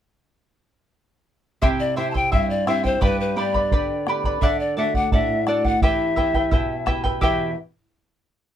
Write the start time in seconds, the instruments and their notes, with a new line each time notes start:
1.62 nylon-string guitar C3, charango E4 G4 C5 E5 G5, pan flute E5, bombo low
1.80 pan flute D5
1.96 nylon-string guitar C4 E4 G4, charango E4 C5 E5 G5, pan flute E5
2.11 charango G5, pan flute A5
2.15 charango E4 C5, pan flute G5, bombo low
2.32 nylon-string guitar G2, charango E4 C5 E5 G5, pan flute E5, bombo low
2.50 pan flute D5
2.66 nylon-string guitar C4 E4 G4, charango E4 C5 E5 G5, pan flute E5, bombo rim
2.84 charango E4 C5 G5, pan flute C5, bombo low
3.01 nylon-string guitar G2, charango G4 B4 D5 G5 B5, pan flute B4, bombo low
3.21 pan flute B4
3.36 nylon-string guitar B3 D4 G4, charango B4 D5 G5 B5, pan flute D5
3.54 charango B4 D5 B5, bombo low
3.72 nylon-string guitar D3, charango B4 D5 G5 B5, bombo low
4.07 nylon-string guitar B3 D4 G4, charango B4 D5 G5 B5, bombo rim
4.24 charango B4 D5 B5, bombo low
4.42 nylon-string guitar D3, charango A4 D5 F#5, pan flute E5, bombo low
4.60 pan flute D5
4.77 nylon-string guitar A3 D4 F#4, charango A4 D5 F#5, pan flute E5
4.94 charango D5 F#5, pan flute F#5, bombo low
5.12 nylon-string guitar A2, charango A4 D5 F#5, pan flute E5, bombo low
5.47 nylon-string guitar A3 D4 F#4, charango A4 D5 F#5, pan flute D5, bombo rim
5.64 charango D5 F#5, pan flute F#5, bombo low
5.82 nylon-string guitar E3, charango E4 G4 B4 E5 G5, pan flute E5, bombo low
6.16 nylon-string guitar B3 E4 G4, charango E4 B4 E5 G5, bombo low
6.34 charango E4 B4 G5, bombo low
6.51 nylon-string guitar B2, charango E4 B4 E5 G5, bombo low
6.86 nylon-string guitar B3 E4 G4, charango E4 B4 E5 G5, bombo rim, bombo low
7.04 charango E4 B4 G5, bombo low
7.21 nylon-string guitar E2 B2 E3 B3 G4 B4, charango E4 G4 B4 E5 G5, pan flute E5, bombo low